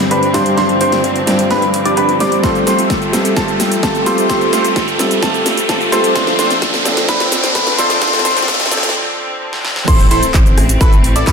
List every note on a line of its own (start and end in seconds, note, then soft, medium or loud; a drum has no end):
0.00 0.34 G2 medium
0.00 2.40 D3 medium
0.00 0.34 G3 medium
0.00 0.56 G3 medium
0.00 0.34 C4 medium
0.00 2.40 C4 medium
0.00 0.34 D4 medium
0.00 0.35 C5 medium
0.00 riser medium
0.11 0.30 G1 loud
0.11 0.31 D4 medium
0.11 0.31 G4 medium
0.11 0.31 B4 medium
0.11 0.31 B5 medium
0.11 closed hi-hat medium
0.23 closed hi-hat soft
0.34 0.44 D2 medium
0.34 0.54 G2 loud
0.34 0.55 G3 medium
0.34 0.55 C4 medium
0.34 0.54 D4 medium
0.34 0.55 D4 medium
0.34 0.54 G4 medium
0.34 0.54 C5 medium
0.34 0.55 C5 loud
0.34 0.54 C6 medium
0.34 snare medium
0.34 open hi-hat loud
0.46 closed hi-hat soft
0.56 0.77 G1 loud
0.56 1.24 G2 medium
0.56 6.12 F3 medium
0.56 1.24 G3 medium
0.56 1.25 C4 medium
0.56 0.78 D4 loud
0.56 1.25 D4 medium
0.56 0.78 G4 medium
0.56 0.78 C5 loud
0.56 1.25 C5 loud
0.56 0.78 C6 loud
0.56 snare medium
0.56 closed hi-hat medium
0.69 closed hi-hat soft
0.81 0.90 G1 medium
0.81 0.94 D4 medium
0.81 0.94 G4 medium
0.81 0.94 C5 loud
0.81 0.94 C6 loud
0.81 open hi-hat loud
0.92 snare medium
0.92 closed hi-hat soft
1.04 1.23 G1 medium
1.04 closed hi-hat soft
1.16 closed hi-hat soft
1.26 1.47 G1 medium
1.26 2.17 G2 medium
1.26 2.17 G3 medium
1.26 2.18 C4 medium
1.26 2.18 D4 medium
1.26 2.18 C5 medium
1.26 snare medium
1.26 open hi-hat loud
1.39 closed hi-hat soft
1.51 1.70 G1 loud
1.51 1.64 D4 medium
1.51 1.64 G4 medium
1.51 1.64 B4 loud
1.51 1.64 B5 loud
1.51 snare medium
1.51 closed hi-hat soft
1.62 closed hi-hat soft
1.74 1.83 G1 medium
1.74 open hi-hat loud
1.85 1.94 D4 medium
1.85 1.94 G4 medium
1.85 1.94 D5 medium
1.85 1.94 D6 medium
1.85 closed hi-hat soft
1.97 2.16 G1 loud
1.97 2.11 D4 medium
1.97 2.11 G4 medium
1.97 2.11 B4 loud
1.97 2.11 B5 loud
1.97 closed hi-hat soft
2.09 closed hi-hat soft
2.20 2.41 G3 medium
2.20 2.41 C4 medium
2.20 2.41 D4 loud
2.20 2.41 D4 medium
2.20 2.41 G4 medium
2.20 2.41 C5 medium
2.20 2.41 D5 loud
2.20 2.41 D6 loud
2.20 snare medium
2.20 open hi-hat medium
2.32 closed hi-hat medium
2.42 3.10 G3 medium
2.42 6.12 G3 medium
2.42 6.12 A3 medium
2.42 2.64 A3 loud
2.42 3.10 C4 medium
2.42 2.64 C4 medium
2.42 2.64 F4 medium
2.42 3.11 F4 medium
2.42 2.64 G4 medium
2.42 3.11 A4 medium
2.42 2.64 C5 loud
2.42 2.64 C6 loud
2.42 kick loud
2.42 snare medium
2.42 closed hi-hat medium
2.42 shaker soft
2.55 closed hi-hat soft
2.55 shaker soft
2.67 2.80 A3 medium
2.67 2.80 C4 medium
2.67 2.80 F4 medium
2.67 2.80 G4 medium
2.67 2.80 C5 medium
2.67 2.80 C6 medium
2.67 snare medium
2.67 open hi-hat loud
2.67 shaker medium
2.79 closed hi-hat soft
2.79 shaker soft
2.90 3.09 F1 medium
2.90 kick loud
2.90 snare medium
2.90 closed hi-hat soft
2.90 shaker soft
3.02 closed hi-hat soft
3.02 shaker soft
3.12 3.33 F1 medium
3.12 4.03 G3 medium
3.12 4.03 C4 medium
3.12 4.04 F4 medium
3.12 4.04 A4 medium
3.12 snare medium
3.12 open hi-hat medium
3.12 shaker medium
3.25 closed hi-hat medium
3.25 shaker soft
3.37 3.56 F1 loud
3.37 3.50 A3 medium
3.37 3.50 C4 medium
3.37 3.50 F4 medium
3.37 3.50 G4 medium
3.37 3.50 A4 loud
3.37 3.50 A5 loud
3.37 kick loud
3.37 snare medium
3.37 closed hi-hat soft
3.37 shaker soft
3.48 closed hi-hat soft
3.48 shaker soft
3.60 3.70 F1 medium
3.60 snare medium
3.60 open hi-hat loud
3.60 shaker medium
3.72 closed hi-hat soft
3.72 shaker soft
3.83 4.03 A3 medium
3.83 4.03 C4 medium
3.83 4.03 F4 medium
3.83 4.03 G4 medium
3.83 4.03 A4 medium
3.83 4.03 A5 medium
3.83 kick loud
3.83 snare medium
3.83 closed hi-hat medium
3.83 shaker soft
3.95 closed hi-hat soft
3.95 shaker soft
4.06 4.27 G3 medium
4.06 4.26 A3 medium
4.06 4.27 C4 medium
4.06 4.26 C4 medium
4.06 4.26 F4 medium
4.06 4.27 F4 medium
4.06 4.26 G4 medium
4.06 4.27 A4 loud
4.06 4.26 C5 loud
4.06 4.26 C6 loud
4.06 snare medium
4.06 open hi-hat medium
4.06 shaker medium
4.18 closed hi-hat soft
4.18 shaker soft
4.28 4.96 G3 medium
4.28 4.50 A3 loud
4.28 4.96 C4 medium
4.28 4.50 C4 medium
4.28 4.50 F4 medium
4.28 4.97 F4 medium
4.28 4.50 G4 medium
4.28 4.97 A4 medium
4.28 4.50 C5 loud
4.28 4.50 C6 loud
4.28 kick loud
4.28 snare medium
4.28 closed hi-hat medium
4.28 shaker soft
4.41 closed hi-hat soft
4.41 shaker soft
4.53 4.66 A3 medium
4.53 4.66 C4 medium
4.53 4.66 F4 medium
4.53 4.66 G4 medium
4.53 4.66 C5 medium
4.53 4.66 C6 loud
4.53 snare medium
4.53 open hi-hat loud
4.53 shaker medium
4.65 closed hi-hat soft
4.65 shaker soft
4.76 4.95 F1 medium
4.76 kick loud
4.76 snare medium
4.76 closed hi-hat soft
4.76 shaker soft
4.88 closed hi-hat soft
4.88 shaker soft
4.98 5.19 F1 medium
4.98 5.89 G3 medium
4.98 5.89 C4 medium
4.98 5.90 F4 medium
4.98 5.90 A4 medium
4.98 snare medium
4.98 open hi-hat medium
4.98 shaker medium
5.11 closed hi-hat medium
5.11 shaker soft
5.23 5.36 A3 medium
5.23 5.36 C4 medium
5.23 5.36 F4 medium
5.23 5.36 G4 medium
5.23 5.36 A4 loud
5.23 5.36 A5 loud
5.23 kick loud
5.23 snare medium
5.23 closed hi-hat medium
5.23 shaker soft
5.34 closed hi-hat soft
5.34 shaker soft
5.46 snare medium
5.46 open hi-hat loud
5.46 shaker medium
5.57 closed hi-hat medium
5.57 shaker soft
5.69 5.89 A3 medium
5.69 5.89 C4 medium
5.69 5.89 F4 medium
5.69 5.89 G4 medium
5.69 5.89 A4 medium
5.69 5.89 A5 medium
5.69 kick loud
5.69 snare medium
5.69 closed hi-hat medium
5.69 shaker soft
5.81 closed hi-hat soft
5.81 shaker soft
5.92 6.13 G3 loud
5.92 6.12 A3 medium
5.92 6.13 C4 medium
5.92 6.12 C4 medium
5.92 6.12 F4 medium
5.92 6.13 F4 medium
5.92 6.12 G4 medium
5.92 6.13 A4 loud
5.92 6.12 C5 loud
5.92 6.12 C6 medium
5.92 snare medium
5.92 open hi-hat medium
5.92 shaker medium
6.04 closed hi-hat medium
6.04 shaker soft
6.14 9.84 D3 medium
6.14 6.82 F3 medium
6.14 9.84 F3 medium
6.14 6.36 A3 loud
6.14 6.82 C4 medium
6.14 6.36 C4 medium
6.14 9.84 C4 medium
6.14 6.36 D4 medium
6.14 6.83 D4 medium
6.14 6.36 F4 loud
6.14 6.83 A4 loud
6.14 6.36 C5 loud
6.14 6.36 C6 loud
6.14 kick loud
6.14 snare medium
6.14 closed hi-hat medium
6.14 shaker medium
6.27 snare medium
6.27 closed hi-hat soft
6.27 shaker soft
6.39 6.52 A3 medium
6.39 6.52 C4 medium
6.39 6.52 D4 medium
6.39 6.52 F4 medium
6.39 6.52 C5 loud
6.39 6.52 C6 loud
6.39 snare loud
6.39 open hi-hat loud
6.39 shaker medium
6.51 snare medium
6.51 closed hi-hat medium
6.51 shaker soft
6.62 kick loud
6.62 snare medium
6.62 closed hi-hat medium
6.62 shaker soft
6.74 snare medium
6.74 closed hi-hat soft
6.74 shaker soft
6.84 7.75 F3 medium
6.84 7.75 C4 medium
6.84 7.76 D4 medium
6.84 7.76 A4 medium
6.84 snare loud
6.84 open hi-hat medium
6.84 shaker medium
6.97 snare medium
6.97 closed hi-hat medium
6.97 shaker soft
7.09 7.22 A3 medium
7.09 7.22 C4 medium
7.09 7.22 D4 medium
7.09 7.22 F4 medium
7.09 7.22 B4 loud
7.09 7.22 B5 loud
7.09 kick loud
7.09 snare medium
7.09 closed hi-hat medium
7.09 shaker soft
7.20 snare medium
7.20 closed hi-hat soft
7.20 shaker soft
7.32 snare loud
7.32 open hi-hat loud
7.32 shaker medium
7.44 snare medium
7.44 closed hi-hat medium
7.44 shaker soft
7.55 7.75 A3 medium
7.55 7.75 C4 medium
7.55 7.75 D4 medium
7.55 7.75 F4 medium
7.55 7.75 B4 medium
7.55 7.75 B5 medium
7.55 kick loud
7.55 snare loud
7.55 closed hi-hat medium
7.55 shaker soft
7.67 snare medium
7.67 closed hi-hat soft
7.67 shaker soft
7.78 7.99 F3 loud
7.78 7.98 A3 medium
7.78 7.99 C4 medium
7.78 7.98 C4 medium
7.78 7.98 D4 medium
7.78 7.99 D4 medium
7.78 7.98 F4 medium
7.78 7.99 A4 loud
7.78 7.98 C5 loud
7.78 7.98 C6 medium
7.78 snare loud
7.78 open hi-hat medium
7.78 shaker medium
7.90 snare medium
7.90 closed hi-hat medium
7.90 shaker soft
8.01 8.68 F3 medium
8.01 8.22 A3 loud
8.01 8.69 C4 medium
8.01 8.22 C4 medium
8.01 8.22 D4 medium
8.01 8.69 D4 medium
8.01 8.22 F4 medium
8.01 8.69 A4 loud
8.01 8.22 C5 loud
8.01 8.22 C6 loud
8.01 kick loud
8.01 snare loud
8.01 closed hi-hat medium
8.01 shaker soft
8.07 snare medium
8.13 snare medium
8.13 closed hi-hat soft
8.13 shaker soft
8.19 snare medium
8.25 8.38 A3 medium
8.25 8.38 C4 medium
8.25 8.38 D4 medium
8.25 8.38 F4 medium
8.25 8.38 C5 loud
8.25 8.38 C6 loud
8.25 snare loud
8.25 open hi-hat loud
8.25 shaker medium
8.31 snare medium
8.37 snare medium
8.37 closed hi-hat medium
8.37 shaker soft
8.42 snare medium
8.48 kick loud
8.48 snare loud
8.48 closed hi-hat medium
8.48 shaker soft
8.54 snare medium
8.60 snare loud
8.60 closed hi-hat soft
8.60 shaker soft
8.66 snare medium
8.70 8.94 F3 medium
8.70 8.95 C4 medium
8.70 8.95 D4 medium
8.70 8.95 A4 medium
8.70 snare loud
8.70 open hi-hat medium
8.70 shaker medium
8.77 snare loud
8.83 snare medium
8.83 closed hi-hat medium
8.83 shaker soft
8.89 snare loud
9.53 snare medium
9.65 snare medium
9.76 snare medium
9.88 10.07 A1 loud
9.88 11.32 E3 medium
9.88 11.32 A3 medium
9.88 11.32 C4 medium
9.88 10.08 E4 loud
9.88 10.08 A4 medium
9.88 10.08 C5 loud
9.88 10.08 C6 loud
9.88 kick loud
9.88 closed hi-hat medium
9.88 crash loud
9.88 impact medium
9.88 shaker medium
9.99 closed hi-hat soft
9.99 shaker soft
10.11 10.21 A1 medium
10.11 10.25 E4 medium
10.11 10.25 A4 medium
10.11 10.25 C5 loud
10.11 10.25 C6 loud
10.11 open hi-hat loud
10.23 closed hi-hat medium
10.23 shaker medium
10.34 10.54 A1 medium
10.34 kick loud
10.34 clap loud
10.34 closed hi-hat medium
10.34 shaker medium
10.46 closed hi-hat soft
10.46 shaker soft
10.58 10.77 A1 medium
10.58 cross-stick medium
10.58 open hi-hat medium
10.69 closed hi-hat medium
10.69 shaker medium
10.81 11.00 A1 loud
10.81 10.94 E4 medium
10.81 10.94 A4 medium
10.81 10.94 B4 loud
10.81 10.94 B5 loud
10.81 kick loud
10.81 closed hi-hat medium
10.81 shaker medium
10.93 closed hi-hat soft
10.93 shaker soft
11.04 11.23 A1 medium
11.04 open hi-hat loud
11.16 11.25 E4 medium
11.16 11.25 A4 medium
11.16 11.25 D5 medium
11.16 11.25 D6 medium
11.16 closed hi-hat medium
11.16 shaker medium
11.27 11.32 A1 loud
11.27 11.32 E4 medium
11.27 11.32 A4 medium
11.27 11.32 B4 loud
11.27 11.32 B5 loud
11.27 kick loud
11.27 clap loud
11.27 closed hi-hat medium
11.27 shaker medium